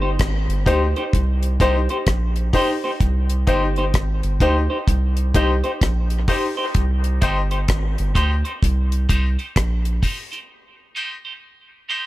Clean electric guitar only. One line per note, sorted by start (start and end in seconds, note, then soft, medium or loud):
0.02 0.09 D#4 soft
0.02 0.09 G4 medium
0.02 0.09 C5 medium
0.67 0.81 D#4 medium
0.67 0.82 G4 medium
0.67 0.82 C5 medium
0.97 1.04 D#4 medium
0.97 1.03 G4 medium
0.97 1.03 C5 medium
1.61 1.75 D#4 medium
1.61 1.75 G4 medium
1.61 1.75 C5 medium
1.90 1.97 D#4 soft
1.90 1.97 G4 medium
1.90 1.97 C5 medium
2.55 2.69 D#4 medium
2.55 2.69 G4 medium
2.55 2.70 C5 medium
2.84 2.91 D#4 soft
2.84 2.91 G4 medium
2.84 2.90 C5 medium
3.48 3.62 D#4 medium
3.48 3.63 G4 medium
3.48 3.63 C5 medium
3.78 3.84 D#4 soft
3.78 3.84 G4 medium
3.78 3.84 C5 medium
4.41 4.56 D#4 medium
4.41 4.56 G4 medium
4.41 4.56 C5 medium
4.70 4.77 D#4 soft
4.70 4.77 G4 medium
4.70 4.77 C5 medium
5.35 5.50 D#4 medium
5.35 5.50 G4 medium
5.35 5.50 C5 medium
5.64 5.71 D#4 soft
5.64 5.71 G4 medium
5.64 5.71 C5 medium
6.28 6.43 D#4 medium
6.28 6.43 G4 medium
6.28 6.43 C5 medium
6.57 6.65 D#4 soft
6.57 6.65 G4 soft
6.57 6.64 C5 medium
7.21 7.36 D#4 medium
7.21 7.37 G4 medium
7.21 7.37 C5 medium
7.51 7.58 D#4 soft
7.51 7.58 G4 medium
7.51 7.58 C5 medium
8.15 8.30 D#4 medium
8.15 8.30 G4 medium
8.15 8.30 C5 medium
8.45 8.52 D#4 soft
8.45 8.52 G4 soft
8.45 8.52 C5 medium
9.09 9.24 D#4 medium
9.09 9.24 G4 medium
9.09 9.24 C5 loud
9.39 9.46 D#4 soft
9.39 9.46 G4 medium
9.39 9.45 C5 medium
10.02 10.17 D#4 medium
10.02 10.17 G4 medium
10.02 10.18 C5 medium
10.32 10.39 D#4 soft
10.32 10.39 G4 medium
10.32 10.39 C5 medium
10.95 11.10 D#4 medium
10.95 11.11 G4 medium
10.95 11.11 C5 medium
11.25 11.33 D#4 soft
11.25 11.32 G4 medium
11.25 11.32 C5 medium
11.89 12.04 D#4 medium
11.89 12.04 G4 medium
11.89 12.04 C5 medium